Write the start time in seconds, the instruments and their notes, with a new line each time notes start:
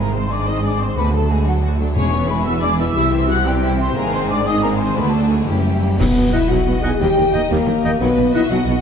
Already playing: double bass section G#1, cello section G#2, harp G#2 C4 C5, viola section G#3, violin section D#4 G#4
0.00 french horn section A#3, violin section A#4, flute section A#5
0.05 harp D#3
0.12 viola section D#3 C4, harp C4, violin section C4 C5, french horn section C4, flute section C6
0.17 violin section C5
0.21 harp D#4
0.29 viola section G#3, french horn section D4, violin section D#4 G#4 D5, harp G#4, flute section D6
0.39 harp C5
0.46 viola section D#3 C4, violin section C4 C5 D#5, french horn section D#4, harp D#5, flute section D#6
0.55 harp G#5
0.62 viola section G#3, french horn section D4, violin section D#4 G#4 D5, harp C5, flute section D6
0.69 harp G#4
0.78 viola section D#3 C4, harp C4, violin section C4 C5, french horn section C4
0.82 flute section C6
0.87 harp D#3
0.95 double bass section D2, cello section D2, harp D3, viola section D3 A3, french horn section B3, violin section F#4 B4, flute section B5
1.04 harp A3
1.12 viola section F#3, french horn section A3, violin section D4 A4, harp D4, flute section A5
1.20 harp F#4
1.29 viola section D3 A3, french horn section G#3, violin section F#4 G#4, flute section G#5
1.36 harp D5
1.45 french horn section F#3, viola section F#3, violin section D4 F#4 A4, harp F#5, flute section F#5
1.53 harp A5
1.61 viola section D3 A3, violin section F#4, harp D5
1.71 harp A4
1.79 viola section F#3, harp D4, violin section D4 A4
1.88 harp A3
1.96 double bass section E1, timpani E2, cello section E2, harp E3, viola section G#3, french horn section C#4, violin section E4 G#4 C#5, flute section C#6
2.05 harp B3
2.12 viola section E3 B3, violin section B3 B4
2.23 harp G#4
2.28 viola section G#3, french horn section B3, violin section E4 G#4 B4, harp B4, flute section B5
2.39 harp E5
2.44 viola section E3 B3, violin section B3 B4 E5, french horn section E4, harp G#5, flute section E6
2.55 harp B5
2.61 viola section G#3, french horn section D4, violin section E4 G#4 D5, harp E5, flute section D6
2.73 harp B4
2.78 viola section E3 B3, violin section B3 B4 E5, french horn section E4, harp E4, flute section E6
2.88 harp B3
2.95 double bass section C2, cello section C3, harp C3, viola section G3, violin section E4
3.04 harp G3
3.12 viola section E3, violin section C4 G4, harp C4
3.21 harp E4
3.28 viola section G3, violin section E4 F#5, french horn section F#4, harp G4, flute section F#6
3.38 harp C5
3.45 viola section E3, french horn section G3, violin section C4 G4, harp E5, flute section G5
3.54 harp G5
3.62 viola section G3, violin section E4, harp C5
3.71 harp G4
3.77 viola section E3, french horn section C4, harp C4, violin section C4 G4 C5, flute section C6
3.86 harp G3
3.95 double bass section G#1, harp G#2, cello section G#2, viola section D#3 G#3, french horn section A#3, violin section C4 G#4 A#4, flute section A#5
4.04 harp D#3
4.12 harp C4, french horn section C4, violin section C5, flute section C6
4.22 harp D#4
4.29 french horn section D4, harp G#4, violin section D5, flute section D6
4.38 harp C5
4.45 viola section D#3 G#3, violin section C4 G#4 D#5, french horn section D#4, harp D#5, flute section D#6
4.62 french horn section A#3, violin section A#4, harp C5, flute section A#5
4.71 harp G#4
4.78 harp C4, french horn section C4, violin section C5, flute section C6
4.88 harp D#3
4.95 double bass section D2, cello section D2, harp D3, viola section D3 A3, french horn section B3, violin section D4 F#4 B4, flute section B5
5.05 harp A3
5.10 french horn section A3, harp D4, flute section A5
5.15 violin section A4
5.21 harp A4
5.29 french horn section G#3, violin section G#4, harp A4, flute section G#5
5.38 harp D5
5.46 double bass section F#1, harp F#2, cello section F#2, viola section E3 A#3, french horn section G3, violin section C#4 E4 G4, flute section G5
5.57 harp C#3
5.64 harp C#4
5.73 harp E4
5.82 harp A#4
5.91 harp C#5
5.98 double bass section B1, tuba B1, harp B2, cello section B2, timpani B2, viola section F#3 F#4, french horn section B3, violin section B4 D#5, flute section B4, concert bass drum, crash
6.16 double bass section B1, tuba B1, cello section B2, viola section B3
6.31 double bass section B1, tuba B1, cello section B2, viola section D#4, french horn section E4, harp F#4, clarinet D#5, flute section E5, violin section E5, oboe F#5
6.49 double bass section B1, tuba B1, cello section B2, viola section F#3, french horn section F#4, harp D#5, violin section F#5, flute section F#5
6.65 double bass section B1, tuba B1, cello section B2, viola section B3, harp D#4
6.83 double bass section B1, tuba B1, cello section B2, harp F#3, viola section D#4, french horn section G#4, clarinet D#5, oboe F#5, flute section G#5, violin section G#5
6.99 double bass section D#2, tuba D#2, harp D#3, cello section D#3, viola section G3 G4, french horn section G4, flute section G5, violin section G5
7.16 double bass section D#2, tuba D#2, cello section D#3, viola section A#3, harp D#4
7.32 double bass section D#2, tuba D#2, cello section D#3, french horn section D#4, viola section D#4, flute section D#5, violin section D#5, clarinet D#5, oboe G5
7.50 tuba D#2, double bass section D#2, cello section D#3, viola section G3, french horn section A#3, flute section A#4, violin section A#4, harp D#5
7.66 double bass section D#2, tuba D#2, cello section D#3, viola section A#3, harp D#4
7.83 double bass section D#2, tuba D#2, cello section D#3, harp A#3, viola section D#4, clarinet D#5, oboe G5
8.00 double bass section B1, tuba B1, cello section B2, harp B2, viola section F#3 F#4, french horn section B3, violin section B4 D#5, flute section B4
8.17 double bass section B1, tuba B1, cello section B2, viola section B3
8.33 double bass section B1, tuba B1, cello section B2, viola section D#4, french horn section E4, harp F#4, clarinet D#5, violin section E5, flute section E5, oboe F#5
8.50 double bass section B1, tuba B1, cello section B2, viola section F#3, french horn section F#4, harp D#5, flute section F#5, violin section F#5
8.66 double bass section B1, tuba B1, cello section B2, viola section B3, harp D#4